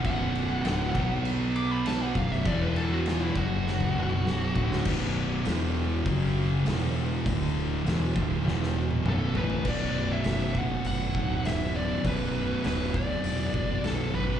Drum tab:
CC |x-x-x-x-x-x-x-x-|x-x-x-x---------|x---------------|----------------|
HH |----------------|----------------|----o---o---o---|o---o-----------|
SD |----o-------o--o|----o---o---o--o|----o-------o---|----o---oo------|
T1 |----------------|----------------|----------------|-----------o----|
T2 |----------------|-----------o----|----------------|------------o---|
FT |----------------|----------------|----------------|--------------oo|
BD |o-----o-------o-|o-----o--o----o-|o-------o-------|o-----o---------|

CC |x---------------|----------------|
HH |----o---o---o---|o---o---o---o---|
SD |----o-------o---|----o-------o---|
T1 |----------------|----------------|
T2 |----------------|----------------|
FT |----------------|----------------|
BD |o-----o---o-----|o-----o---o-----|